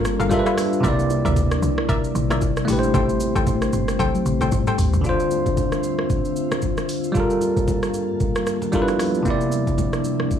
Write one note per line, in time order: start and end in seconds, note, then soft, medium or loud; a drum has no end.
0.00 0.18 G1 loud
0.00 0.26 G3 medium
0.00 2.64 G3 medium
0.00 0.29 A#3 medium
0.00 2.64 D4 medium
0.00 0.28 F4 medium
0.00 0.80 F4 medium
0.00 0.16 A4 loud
0.00 0.29 A4 medium
0.00 0.16 A#4 medium
0.00 0.30 A#4 medium
0.00 0.16 F5 loud
0.00 0.82 A5 medium
0.05 cross-stick loud
0.05 shaker medium
0.20 0.30 G1 medium
0.20 0.28 A4 medium
0.20 0.29 A#4 medium
0.20 0.29 F5 medium
0.20 low bongo medium
0.20 shaker medium
0.30 0.83 G3 medium
0.30 0.83 F4 medium
0.30 0.84 A4 medium
0.30 0.39 A#4 medium
0.30 0.83 B4 medium
0.30 0.83 E5 medium
0.30 0.85 E5 medium
0.30 kick medium
0.30 high bongo medium
0.30 shaker medium
0.39 0.88 B4 medium
0.46 0.55 F4 medium
0.46 0.55 A4 medium
0.46 0.55 B4 medium
0.46 0.55 E5 medium
0.46 cross-stick medium
0.46 shaker medium
0.58 cross-stick loud
0.58 open hi-hat medium
0.58 shaker loud
0.73 shaker medium
0.80 1.22 C2 loud
0.80 2.63 C3 medium
0.80 2.66 C3 medium
0.80 2.64 A#3 medium
0.80 2.66 A#3 medium
0.80 2.66 E4 medium
0.80 1.21 A#4 loud
0.80 1.22 D5 medium
0.80 1.22 E5 loud
0.80 kick loud
0.80 low conga medium
0.80 shaker medium
0.86 2.65 E4 medium
0.86 2.67 D5 medium
0.99 shaker medium
1.10 high bongo soft
1.10 low bongo soft
1.10 shaker loud
1.25 1.60 D2 medium
1.25 1.34 A#4 medium
1.25 1.34 D5 medium
1.25 1.34 E5 medium
1.25 kick loud
1.25 low bongo medium
1.25 shaker medium
1.36 kick loud
1.36 high bongo medium
1.36 low conga medium
1.36 shaker medium
1.51 cross-stick loud
1.51 shaker soft
1.62 2.11 C2 medium
1.62 shaker loud
1.78 cross-stick loud
1.89 2.27 A#4 loud
1.89 2.27 D5 medium
1.89 2.27 E5 loud
1.89 kick loud
1.89 low conga medium
1.89 shaker medium
2.04 shaker medium
2.15 2.64 A#1 loud
2.15 shaker medium
2.30 2.39 A#4 medium
2.30 2.39 D5 medium
2.30 2.39 E5 medium
2.30 cross-stick loud
2.30 low bongo medium
2.30 shaker medium
2.41 kick loud
2.41 high bongo medium
2.41 shaker medium
2.57 cross-stick medium
2.57 shaker medium
2.65 2.92 A1 loud
2.65 5.02 G3 medium
2.65 4.73 A3 medium
2.65 5.02 A3 medium
2.65 5.02 C4 medium
2.65 4.74 E4 medium
2.65 open hi-hat medium
2.65 shaker loud
2.70 4.75 G4 medium
2.70 2.78 B4 medium
2.79 4.80 C5 medium
2.83 shaker medium
2.94 3.33 A1 loud
2.94 3.32 A4 loud
2.94 3.32 C5 medium
2.94 3.32 G5 loud
2.94 kick loud
2.94 low conga medium
2.94 shaker medium
3.09 shaker medium
3.20 high bongo soft
3.20 low bongo soft
3.20 shaker loud
3.35 3.70 A1 loud
3.35 3.44 A4 medium
3.35 3.44 C5 medium
3.35 3.44 G5 medium
3.35 kick loud
3.35 low bongo medium
3.35 shaker medium
3.47 kick loud
3.47 high bongo medium
3.47 low conga medium
3.47 shaker medium
3.62 cross-stick medium
3.62 shaker soft
3.73 3.97 G1 medium
3.73 shaker medium
3.88 cross-stick medium
3.88 shaker medium
3.99 4.14 C2 medium
3.99 4.37 A4 loud
3.99 4.37 C5 medium
3.99 4.38 G5 loud
3.99 kick loud
3.99 high tom medium
3.99 low conga medium
3.99 shaker medium
4.15 high tom medium
4.15 shaker medium
4.26 4.40 A1 medium
4.26 mid tom medium
4.26 shaker medium
4.41 4.51 A1 medium
4.41 4.50 A4 medium
4.41 4.50 C5 medium
4.41 4.50 G5 medium
4.41 mid tom medium
4.41 low bongo medium
4.41 shaker medium
4.52 4.66 G1 medium
4.52 kick loud
4.52 mid tom medium
4.52 high bongo medium
4.52 shaker medium
4.67 4.76 A4 medium
4.67 4.76 C5 medium
4.67 4.76 G5 medium
4.67 mid tom medium
4.67 shaker medium
4.78 4.92 A1 medium
4.78 floor tom loud
4.78 open hi-hat medium
4.78 shaker loud
4.93 5.04 A1 medium
4.93 floor tom loud
4.93 shaker medium
5.01 7.13 D2 medium
5.01 7.10 D3 medium
5.01 9.22 D3 medium
5.01 7.13 C4 medium
5.01 7.11 D4 medium
5.01 7.13 F4 medium
5.01 7.13 E5 medium
5.01 kick loud
5.01 low conga medium
5.01 shaker medium
5.07 7.12 F4 medium
5.07 7.13 C5 medium
5.20 shaker medium
5.31 high bongo soft
5.31 shaker medium
5.46 kick loud
5.46 low bongo medium
5.46 shaker medium
5.57 kick loud
5.57 high bongo medium
5.57 low conga medium
5.57 shaker medium
5.72 cross-stick medium
5.72 shaker soft
5.83 shaker medium
5.99 cross-stick medium
6.10 kick loud
6.10 low conga medium
6.10 shaker medium
6.25 shaker medium
6.36 shaker medium
6.51 cross-stick loud
6.51 low bongo medium
6.51 shaker medium
6.62 kick medium
6.62 high bongo medium
6.62 shaker medium
6.77 cross-stick medium
6.77 high bongo medium
6.77 shaker medium
6.89 open hi-hat medium
6.89 shaker loud
7.04 shaker medium
7.12 9.23 G2 medium
7.12 8.68 G3 medium
7.12 8.71 A#3 medium
7.12 8.70 F4 medium
7.12 8.71 F5 medium
7.12 9.23 A5 medium
7.12 kick loud
7.12 low conga medium
7.12 shaker medium
7.17 8.71 A4 medium
7.17 8.72 A#4 medium
7.30 shaker medium
7.41 high bongo soft
7.41 shaker medium
7.57 kick loud
7.57 low bongo medium
7.57 shaker medium
7.68 kick loud
7.68 high bongo medium
7.68 low conga medium
7.68 shaker medium
7.83 cross-stick medium
7.83 shaker soft
7.94 shaker medium
8.20 kick loud
8.20 low conga medium
8.20 shaker medium
8.36 cross-stick loud
8.36 shaker medium
8.47 cross-stick medium
8.47 shaker medium
8.62 low bongo medium
8.62 shaker medium
8.72 9.25 F3 medium
8.72 9.25 G3 medium
8.72 9.25 B3 medium
8.72 9.25 D4 medium
8.72 9.26 E4 medium
8.72 9.26 F4 medium
8.72 9.27 A4 medium
8.72 8.82 A#4 medium
8.72 10.39 E5 medium
8.72 kick medium
8.72 high bongo medium
8.72 shaker medium
8.82 9.30 B4 medium
8.88 cross-stick medium
8.88 high bongo medium
8.88 shaker medium
8.99 cross-stick loud
8.99 open hi-hat medium
8.99 shaker loud
9.15 shaker medium
9.23 10.39 C3 medium
9.23 10.39 G3 medium
9.23 10.39 A#3 medium
9.23 10.39 D4 medium
9.23 10.39 A#4 medium
9.23 kick loud
9.23 low conga medium
9.23 shaker medium
9.28 10.39 E4 medium
9.28 10.39 D5 medium
9.41 shaker medium
9.52 high bongo soft
9.52 shaker loud
9.67 kick loud
9.67 low bongo medium
9.67 shaker medium
9.78 kick loud
9.78 high bongo medium
9.78 low conga medium
9.78 shaker medium
9.93 cross-stick medium
9.93 shaker soft
10.04 shaker medium
10.20 cross-stick medium
10.31 kick loud
10.31 low conga medium
10.31 shaker medium